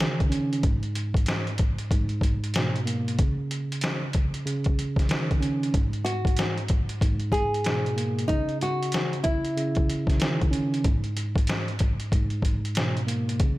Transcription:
Already playing: tine electric piano C#3 D#3
0.00 snare
0.20 kick, closed hi-hat
0.30 tine electric piano C#4, closed hi-hat
0.53 closed hi-hat
0.63 tine electric piano G#2, kick, closed hi-hat
0.83 closed hi-hat
0.95 closed hi-hat
1.14 kick, closed hi-hat
1.26 snare, closed hi-hat
1.47 closed hi-hat
1.58 kick, closed hi-hat
1.78 closed hi-hat
1.91 tine electric piano G#2, kick, closed hi-hat
2.09 closed hi-hat
2.21 kick, closed hi-hat
2.44 closed hi-hat
2.54 tine electric piano B2, snare, closed hi-hat
2.76 closed hi-hat
2.86 tine electric piano A#3, closed hi-hat
3.08 closed hi-hat
3.19 tine electric piano C#3, kick, closed hi-hat
3.51 closed hi-hat
3.72 closed hi-hat
3.81 snare, closed hi-hat
4.13 kick, closed hi-hat
4.34 closed hi-hat
4.46 tine electric piano C#3, closed hi-hat
4.64 kick, closed hi-hat
4.79 closed hi-hat
4.96 kick, snare, closed hi-hat
5.09 tine electric piano D#3, snare, closed hi-hat
5.31 kick, closed hi-hat
5.41 tine electric piano C#4, closed hi-hat
5.63 closed hi-hat
5.74 tine electric piano G#2, kick, closed hi-hat
5.93 closed hi-hat
6.05 nylon-string guitar F#4, closed hi-hat
6.25 kick, closed hi-hat
6.37 snare, closed hi-hat
6.58 closed hi-hat
6.68 kick, closed hi-hat
6.89 closed hi-hat
7.01 tine electric piano G#2, kick, closed hi-hat
7.20 closed hi-hat
7.32 nylon-string guitar G#4, kick, closed hi-hat
7.54 closed hi-hat
7.64 tine electric piano B2, snare, closed hi-hat
7.86 closed hi-hat
7.96 tine electric piano A#3, closed hi-hat
8.19 closed hi-hat
8.28 tine electric piano C#3, nylon-string guitar D#4, kick, closed hi-hat
8.49 closed hi-hat
8.61 nylon-string guitar F#4, closed hi-hat
8.83 closed hi-hat
8.92 snare, closed hi-hat
9.13 closed hi-hat
9.24 nylon-string guitar E4, kick, closed hi-hat
9.45 closed hi-hat
9.56 tine electric piano C#3, closed hi-hat
9.75 kick, closed hi-hat
9.90 closed hi-hat
10.07 kick, snare, closed hi-hat
10.19 tine electric piano D#3, snare, closed hi-hat
10.41 kick, closed hi-hat
10.51 tine electric piano C#4, closed hi-hat
10.74 closed hi-hat
10.84 tine electric piano G#2, kick, closed hi-hat
11.04 closed hi-hat
11.17 closed hi-hat
11.36 kick, closed hi-hat
11.47 snare, closed hi-hat
11.68 closed hi-hat
11.79 kick, closed hi-hat
12.00 closed hi-hat
12.12 tine electric piano G#2, kick, closed hi-hat
12.30 closed hi-hat
12.42 kick, closed hi-hat
12.65 closed hi-hat
12.75 tine electric piano B2, snare, closed hi-hat
12.97 closed hi-hat
13.07 tine electric piano A#3, closed hi-hat
13.29 closed hi-hat
13.40 tine electric piano C#3, kick, closed hi-hat

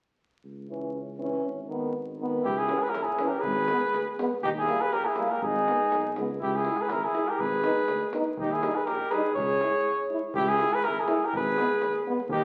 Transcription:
0.44 tuba C#2
0.69 euphonium E3, french horn C#4
1.19 euphonium E3, french horn C#4
1.44 tuba G#1
1.68 euphonium D#3, french horn B3
2.19 euphonium D#3, french horn B3
2.43 tuba C#2, trumpet E4, cornet G4, davul low
2.56 trumpet E4, cornet G#4, davul high
2.67 euphonium E3, french horn C#4, davul high
2.79 trumpet G#4
2.83 cornet B4, davul high
2.90 trumpet E4, cornet A#4
2.94 tuba A#1, davul high
3.03 trumpet E4, cornet G#4
3.19 euphonium E3, french horn C#4, davul high
3.27 trumpet G4, cornet A#4
3.32 davul high
3.39 trumpet G#4, cornet B4, davul low
3.44 tuba G#1
3.58 davul high
3.68 euphonium G#3, french horn B3, davul high
3.82 davul high
3.93 tuba D2, davul high
4.19 euphonium G#3, french horn B3, davul high
4.33 davul high
4.42 tuba D#2, trumpet D#4, cornet G4, davul low
4.57 trumpet E4, cornet G#4, davul high
4.67 euphonium G3, french horn A#3, davul high
4.81 trumpet G#4, cornet B4, davul high
4.92 tuba A#1, trumpet G4, cornet A#4, davul high
5.05 trumpet E4, cornet G#4
5.16 euphonium G3, french horn A#3, davul high
5.30 trumpet G4, cornet A#4, davul high
5.42 tuba G#1, trumpet D#4, cornet G#4, davul low
5.56 davul high
5.67 euphonium G#3, french horn B3, davul high
5.81 davul high
5.92 tuba B1, davul high
6.16 tuba C#2, euphonium G#3, french horn B3, davul high
6.39 tuba C#2, trumpet E4, cornet G4, davul low
6.54 trumpet E4, cornet G#4, davul high
6.65 euphonium G#3, french horn E4, davul high
6.77 trumpet G#4, davul high
6.82 cornet B4
6.89 tuba G#1, trumpet E4, cornet A#4, davul high
7.03 trumpet E4, cornet G#4
7.15 euphonium G#3, french horn E4, davul high
7.27 trumpet G4, cornet A#4, davul high
7.38 tuba G#1, trumpet G#4, cornet B4, davul low
7.52 davul high
7.64 euphonium B3, french horn D#4, davul high
7.78 davul high
7.88 tuba D2, davul high
8.13 euphonium B3, french horn D#4, davul high
8.27 davul high
8.37 tuba D#2, trumpet D#4, cornet G4, davul low
8.51 trumpet E4, cornet G#4, davul high
8.62 euphonium G3, french horn D#4, davul high
8.75 trumpet G#4, cornet B4, davul high
8.86 tuba A#1, trumpet G4, cornet A#4, davul high
9.11 euphonium G3, french horn D#4, trumpet G#4, cornet B4, davul high
9.24 davul high
9.35 tuba C#2, trumpet G#4, cornet C#5, davul low
9.50 davul high
9.60 euphonium G#3, french horn E4, davul high
9.74 davul high
10.10 euphonium G#3, french horn E4
10.34 tuba C#2, trumpet E4, cornet G4, davul low
10.48 trumpet E4, cornet G#4, davul high
10.59 euphonium G#3, french horn E4, davul high
10.73 trumpet G#4, cornet B4, davul high
10.84 tuba G#1, trumpet E4, cornet A#4, davul high
11.00 trumpet E4, cornet G#4
11.06 euphonium G#3, french horn E4, davul high
11.23 trumpet G4, cornet A#4, davul high
11.33 tuba G#1, cornet B4, davul low
11.38 trumpet G#4
11.48 davul high
11.57 euphonium G#3, french horn B3, davul high
11.71 davul high
11.82 tuba D#2, davul high
12.07 euphonium G#3, french horn B3
12.20 davul high
12.29 tuba D#2, trumpet D#4, cornet G4, davul low

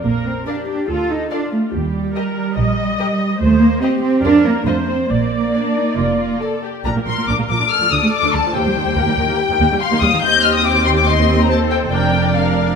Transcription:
0.04 double bass section A#1, cello section A#3, viola section A#4
0.26 cello section C4
0.47 cello section D4, viola section G4, violin section A#4 D5 F5
0.69 cello section D4
0.88 double bass section D2, cello section F4, viola section A4
1.10 cello section D#4
1.31 cello section D4, viola section F4, violin section A4 D5 F5
1.52 cello section A3
1.73 double bass section D#2, cello section G3, viola section G4
2.15 violin section G4 A#4 D#5, viola section A#4
2.57 double bass section A#1, viola section D#5
2.99 violin section G4 A#4 D#5
3.40 double bass section D#2, cello section A3, viola section C5
3.62 cello section A#3
3.82 cello section C4, violin section G4 C5 D#5, viola section G4
4.02 cello section C4
4.24 double bass section F2, cello section D4, violin section F4 A#4 D5, viola section A#4
4.45 cello section A#3
4.66 double bass section F2, cello section A3, violin section F4 C5 D#5, viola section C5
4.89 cello section C4
5.09 double bass section A#1, cello section A#3, viola section D5
5.54 violin section D4 D5
5.76 violin section D#4
5.96 double bass section F1, violin section F4
6.19 violin section F4
6.41 violin section A4 D5
6.64 violin section G4
6.85 double bass section A#1, cello section A#2, viola section D4 A#4, violin section A#5
6.96 cello section A#2, viola section A#3
7.06 double bass section A#1, cello section A#2, viola section F3, violin section C6
7.17 cello section A#2, viola section A#3
7.28 double bass section A#1, cello section A#2, viola section D4, violin section D6
7.39 cello section A#2, viola section A#3
7.49 double bass section A#1, cello section A#2, viola section F3, violin section D6
7.60 cello section A#2, viola section D4
7.71 viola section A4, violin section D5 F6
7.81 cello section D2, viola section F3
7.92 double bass section D2, cello section D2, viola section D4, violin section D#6
8.02 cello section D2, viola section A3
8.13 violin section D6
8.23 cello section D2, viola section D4
8.34 double bass section D2, cello section D2, viola section A3, violin section A5
8.45 cello section D2, viola section F3
8.54 double bass section D#2, cello section D#2, viola section A#3 G4, violin section C5 G5
8.66 cello section D#2, viola section G3
8.76 double bass section D#2, cello section D#2, viola section D#3
8.86 cello section D#2, viola section G3
8.96 double bass section D#2, cello section D#2, viola section A#3, violin section A#4
9.07 cello section D#2, viola section G3
9.18 double bass section D#2, cello section D#2, viola section D#3
9.29 cello section D#2, viola section A#3
9.38 violin section G5
9.50 cello section D#2, viola section D#3
9.60 cello section D#2, double bass section D#2, viola section A#3
9.71 cello section D#2, viola section G3
9.80 violin section F5 C6
9.92 cello section D#2, viola section A#3
10.02 double bass section D#2, cello section D#2, viola section G3, violin section D#6
10.12 cello section D#2, viola section D#3
10.22 double bass section D#2, cello section D#2, viola section C4 G4, violin section D#5 G6
10.44 violin section F6
10.55 violin section D#6
10.65 violin section G5 D6
10.86 violin section C6
10.98 violin section D6
11.08 viola section C4 G4, violin section D#5 C6
11.41 violin section A#5
11.50 viola section A4, violin section C5 A5
11.71 violin section G5
11.91 double bass section F1, cello section F2, viola section D4 A#4, violin section D5 G5
12.35 viola section D4 A#4, violin section F5

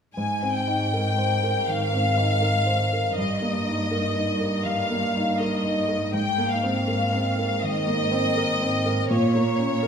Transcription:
0.15 cello section G#2, grand piano G#2, violin section G#5
0.43 grand piano C4
0.53 violin section G5
0.67 grand piano D#4
0.94 grand piano A#4
1.18 grand piano C5
1.43 grand piano A#4
1.67 grand piano D#3, violin section F5
1.93 grand piano C4
2.17 grand piano D#4
2.42 grand piano A#4
2.66 grand piano C5
2.93 grand piano A#4
3.16 cello section G2, grand piano G2, violin section D#5
3.42 grand piano A#3
3.67 grand piano D#4
3.91 grand piano A#4
4.16 grand piano D#4
4.41 grand piano A#4
4.65 grand piano G2, violin section F5
4.90 grand piano A#3
5.15 grand piano D#4
5.39 grand piano A#4, violin section D#5
5.65 grand piano D#4
5.89 grand piano A#4
6.13 grand piano G#2, cello section G#2, violin section G5
6.38 grand piano A#3
6.50 violin section F5
6.63 grand piano C4
6.88 grand piano A#4
7.13 grand piano C4
7.38 grand piano A#4
7.62 grand piano D#3, violin section D#5
7.87 grand piano A#3
8.12 grand piano C4
8.37 grand piano A#4
8.62 grand piano C4
8.86 grand piano A#4
9.10 cello section A#2, grand piano A#2, violin section C#5
9.35 grand piano A#3
9.59 grand piano C#4
9.83 grand piano A#4

